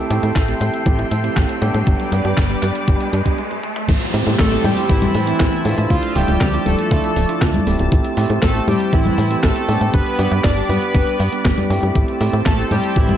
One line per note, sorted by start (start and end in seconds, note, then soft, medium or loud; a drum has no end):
0.00 1.83 A4 medium
0.00 1.83 E5 medium
0.00 3.35 G5 medium
0.00 1.85 C6 medium
0.00 riser medium
0.10 0.20 A2 loud
0.10 0.31 A3 medium
0.10 0.31 C4 medium
0.10 0.31 E4 medium
0.10 0.31 G4 loud
0.10 closed hi-hat medium
0.23 0.32 A2 loud
0.23 closed hi-hat soft
0.36 0.54 A1 loud
0.36 kick loud
0.36 snare loud
0.36 clap medium
0.36 closed hi-hat medium
0.48 0.83 A3 medium
0.48 0.83 C4 medium
0.48 0.83 E4 medium
0.48 0.83 G4 medium
0.48 closed hi-hat soft
0.61 0.70 A2 medium
0.61 closed hi-hat medium
0.61 high conga medium
0.74 closed hi-hat soft
0.86 1.04 A1 medium
0.86 1.07 A3 medium
0.86 1.07 C4 medium
0.86 1.07 E4 medium
0.86 1.07 G4 medium
0.86 kick loud
0.86 closed hi-hat medium
0.99 closed hi-hat soft
0.99 high conga medium
1.11 1.30 A2 medium
1.11 closed hi-hat medium
1.24 1.59 A3 medium
1.24 1.59 C4 medium
1.24 1.59 E4 medium
1.24 1.59 G4 medium
1.24 closed hi-hat soft
1.36 1.46 A1 loud
1.36 kick loud
1.36 snare loud
1.36 clap medium
1.36 closed hi-hat medium
1.49 closed hi-hat soft
1.62 1.71 A2 medium
1.62 2.09 G3 loud
1.62 2.09 B3 medium
1.62 2.09 D4 medium
1.62 2.09 G4 loud
1.62 closed hi-hat medium
1.74 1.84 A2 medium
1.74 closed hi-hat soft
1.87 1.96 G1 loud
1.87 3.37 B4 medium
1.87 3.37 D5 medium
1.87 3.37 D6 medium
1.87 kick loud
1.87 closed hi-hat medium
2.00 closed hi-hat soft
2.12 2.21 G2 loud
2.12 2.33 G3 loud
2.12 2.33 B3 medium
2.12 2.33 D4 medium
2.12 2.33 G4 loud
2.12 closed hi-hat medium
2.25 2.34 G2 loud
2.25 closed hi-hat soft
2.37 2.56 G1 loud
2.37 kick loud
2.37 snare loud
2.37 clap medium
2.37 closed hi-hat medium
2.50 2.85 G3 medium
2.50 2.85 B3 medium
2.50 2.85 D4 medium
2.50 2.85 G4 medium
2.50 closed hi-hat soft
2.63 2.72 G2 medium
2.63 clap medium
2.63 closed hi-hat medium
2.63 high conga medium
2.75 closed hi-hat soft
2.88 2.97 G1 medium
2.88 3.08 G3 medium
2.88 3.08 B3 medium
2.88 3.08 D4 medium
2.88 3.08 G4 medium
2.88 kick loud
2.88 closed hi-hat medium
3.00 closed hi-hat soft
3.13 3.22 G2 loud
3.13 closed hi-hat medium
3.26 3.38 G3 medium
3.26 3.38 B3 medium
3.26 3.38 D4 medium
3.26 3.38 G4 medium
3.26 kick medium
3.26 closed hi-hat soft
3.38 high tom medium
3.51 high tom medium
3.63 mid tom medium
3.76 mid tom medium
3.88 3.98 A1 loud
3.88 5.88 G4 medium
3.88 5.88 C5 medium
3.88 9.90 A5 medium
3.88 7.88 E6 medium
3.88 kick loud
3.88 closed hi-hat medium
3.88 crash loud
3.88 downlifter medium
4.01 closed hi-hat soft
4.14 4.23 A2 loud
4.14 4.34 A3 loud
4.14 4.34 C4 medium
4.14 4.34 E4 medium
4.14 4.34 G4 loud
4.14 open hi-hat loud
4.27 4.36 A2 loud
4.27 closed hi-hat soft
4.39 4.57 A1 loud
4.39 4.63 A3 medium
4.39 4.65 A4 loud
4.39 kick loud
4.39 snare loud
4.39 clap medium
4.39 closed hi-hat medium
4.52 4.86 A3 medium
4.52 4.86 C4 medium
4.52 4.87 E4 medium
4.52 4.87 G4 medium
4.52 closed hi-hat soft
4.64 4.74 A2 medium
4.64 4.88 G3 medium
4.64 4.90 G4 loud
4.64 open hi-hat medium
4.64 high conga medium
4.77 closed hi-hat soft
4.89 5.08 A1 loud
4.89 5.87 E3 medium
4.89 5.10 A3 medium
4.89 5.10 C4 medium
4.89 5.93 E4 loud
4.89 5.10 E4 medium
4.89 5.10 G4 medium
4.89 kick loud
4.89 closed hi-hat medium
5.02 closed hi-hat soft
5.02 high conga medium
5.15 5.33 A2 medium
5.15 open hi-hat loud
5.27 5.62 A3 medium
5.27 5.62 C4 medium
5.27 5.62 E4 medium
5.27 5.62 G4 medium
5.27 closed hi-hat soft
5.40 5.49 A1 loud
5.40 kick loud
5.40 snare loud
5.40 clap loud
5.40 closed hi-hat medium
5.53 closed hi-hat soft
5.65 5.74 A2 medium
5.65 6.13 A3 loud
5.65 6.13 D4 medium
5.65 6.13 E4 medium
5.65 6.13 F4 loud
5.65 open hi-hat loud
5.78 5.87 A2 medium
5.78 closed hi-hat soft
5.90 6.00 D2 loud
5.90 7.90 F3 medium
5.90 6.14 F3 medium
5.90 6.16 F4 loud
5.90 7.90 D5 medium
5.90 kick loud
5.90 closed hi-hat medium
6.03 closed hi-hat soft
6.15 6.25 D1 loud
6.15 6.63 G3 medium
6.15 6.36 A3 loud
6.15 6.36 D4 medium
6.15 6.36 E4 medium
6.15 6.36 F4 loud
6.15 6.67 G4 loud
6.15 open hi-hat loud
6.28 6.37 D1 loud
6.28 closed hi-hat soft
6.41 6.59 D2 loud
6.41 kick loud
6.41 snare loud
6.41 clap medium
6.41 closed hi-hat medium
6.53 6.88 A3 medium
6.53 6.88 D4 medium
6.53 6.88 E4 medium
6.53 6.88 F4 medium
6.53 closed hi-hat soft
6.66 6.75 D1 medium
6.66 7.63 A3 medium
6.66 7.63 A4 loud
6.66 open hi-hat medium
6.66 high conga medium
6.79 closed hi-hat soft
6.91 7.00 D2 medium
6.91 7.12 A3 medium
6.91 7.12 D4 medium
6.91 7.12 E4 medium
6.91 7.12 F4 medium
6.91 kick loud
6.91 snare medium
6.91 closed hi-hat medium
7.04 closed hi-hat soft
7.16 7.26 D1 loud
7.16 open hi-hat loud
7.29 7.64 A3 medium
7.29 7.64 D4 medium
7.29 7.64 E4 medium
7.29 7.64 F4 medium
7.29 closed hi-hat soft
7.42 7.60 D2 medium
7.42 kick loud
7.42 snare loud
7.42 clap loud
7.42 closed hi-hat medium
7.54 closed hi-hat soft
7.54 high conga medium
7.67 7.76 D1 medium
7.67 8.14 A3 loud
7.67 8.14 C4 medium
7.67 8.14 E4 medium
7.67 8.14 G4 loud
7.67 open hi-hat medium
7.79 7.89 D1 loud
7.79 closed hi-hat soft
7.92 8.01 A1 loud
7.92 11.91 G4 medium
7.92 9.92 C5 medium
7.92 9.92 E6 medium
7.92 kick loud
7.92 closed hi-hat medium
8.05 closed hi-hat soft
8.17 8.26 A2 loud
8.17 8.38 A3 loud
8.17 8.38 C4 medium
8.17 8.38 E4 medium
8.17 8.38 G4 loud
8.17 open hi-hat loud
8.30 8.39 A2 loud
8.30 closed hi-hat soft
8.42 8.61 A1 loud
8.42 8.66 A3 medium
8.42 8.66 A4 medium
8.42 kick loud
8.42 snare loud
8.42 clap medium
8.42 closed hi-hat medium
8.55 8.90 A3 medium
8.55 8.90 C4 medium
8.55 8.90 E4 medium
8.55 8.90 G4 medium
8.55 closed hi-hat soft
8.68 8.77 A2 medium
8.68 8.92 G3 medium
8.68 8.94 G4 medium
8.68 open hi-hat medium
8.68 high conga medium
8.80 closed hi-hat soft
8.93 9.11 A1 medium
8.93 9.40 E3 medium
8.93 9.13 A3 medium
8.93 9.13 C4 medium
8.93 9.13 E4 medium
8.93 9.40 E4 loud
8.93 9.13 G4 medium
8.93 kick loud
8.93 closed hi-hat medium
9.05 closed hi-hat soft
9.05 high conga medium
9.18 9.36 A2 medium
9.18 open hi-hat loud
9.31 9.65 A3 medium
9.31 9.65 C4 medium
9.31 9.65 E4 medium
9.31 9.65 G4 medium
9.31 closed hi-hat soft
9.43 9.52 A1 loud
9.43 9.91 A3 medium
9.43 9.95 A4 loud
9.43 kick loud
9.43 snare loud
9.43 clap loud
9.43 closed hi-hat medium
9.56 closed hi-hat soft
9.68 9.78 A2 medium
9.68 10.16 G3 loud
9.68 10.16 B3 medium
9.68 10.16 D4 medium
9.68 10.16 G4 loud
9.68 open hi-hat medium
9.81 9.90 A2 medium
9.81 closed hi-hat soft
9.94 10.03 G1 loud
9.94 10.41 B3 medium
9.94 10.41 B4 loud
9.94 11.93 D5 medium
9.94 11.93 B5 medium
9.94 11.93 D6 medium
9.94 kick loud
9.94 closed hi-hat medium
10.06 closed hi-hat soft
10.19 10.28 G2 loud
10.19 10.39 G3 loud
10.19 10.39 B3 medium
10.19 10.39 D4 medium
10.19 10.39 G4 loud
10.19 open hi-hat loud
10.31 10.41 G2 loud
10.31 closed hi-hat soft
10.44 10.63 G1 loud
10.44 10.68 D4 medium
10.44 10.68 D5 loud
10.44 kick loud
10.44 snare loud
10.44 clap medium
10.44 closed hi-hat medium
10.57 10.92 G3 medium
10.57 10.92 B3 medium
10.57 10.92 D4 medium
10.57 10.92 G4 medium
10.57 closed hi-hat soft
10.69 10.78 G2 medium
10.69 11.66 B3 medium
10.69 11.66 B4 loud
10.69 open hi-hat medium
10.69 high conga medium
10.82 closed hi-hat soft
10.94 11.04 G1 medium
10.94 11.15 G3 medium
10.94 11.15 B3 medium
10.94 11.15 D4 medium
10.94 11.15 G4 medium
10.94 kick loud
10.94 snare medium
10.94 closed hi-hat medium
11.07 closed hi-hat soft
11.20 11.29 G2 loud
11.20 open hi-hat loud
11.32 11.67 G3 medium
11.32 11.67 B3 medium
11.32 11.67 D4 medium
11.32 11.67 G4 medium
11.32 closed hi-hat soft
11.45 11.54 G1 loud
11.45 kick loud
11.45 snare loud
11.45 clap loud
11.45 closed hi-hat medium
11.58 closed hi-hat soft
11.58 high conga medium
11.70 11.79 G2 medium
11.70 12.18 A3 loud
11.70 12.18 C4 medium
11.70 12.18 E4 medium
11.70 12.18 G4 loud
11.70 open hi-hat medium
11.83 11.92 G2 medium
11.83 closed hi-hat soft
11.95 12.05 A1 loud
11.95 13.17 G4 medium
11.95 13.17 C5 medium
11.95 13.17 A5 medium
11.95 13.17 E6 medium
11.95 kick loud
11.95 closed hi-hat medium
12.08 closed hi-hat soft
12.21 12.30 A2 loud
12.21 12.41 A3 loud
12.21 12.41 C4 medium
12.21 12.41 E4 medium
12.21 12.41 G4 loud
12.21 open hi-hat loud
12.33 12.42 A2 medium
12.33 closed hi-hat soft
12.46 12.64 A1 loud
12.46 12.70 A3 medium
12.46 12.72 A4 loud
12.46 kick loud
12.46 snare loud
12.46 clap medium
12.46 closed hi-hat medium
12.58 12.93 A3 medium
12.58 12.93 C4 medium
12.58 12.93 E4 medium
12.58 12.93 G4 medium
12.58 closed hi-hat soft
12.71 12.80 A2 medium
12.71 12.95 G3 medium
12.71 12.97 G4 medium
12.71 open hi-hat loud
12.71 high conga medium
12.84 closed hi-hat soft
12.96 13.15 A1 medium
12.96 13.17 E3 medium
12.96 13.17 A3 medium
12.96 13.17 C4 medium
12.96 13.17 E4 medium
12.96 13.17 E4 loud
12.96 13.17 G4 medium
12.96 kick loud
12.96 closed hi-hat medium
13.09 closed hi-hat soft
13.09 high conga medium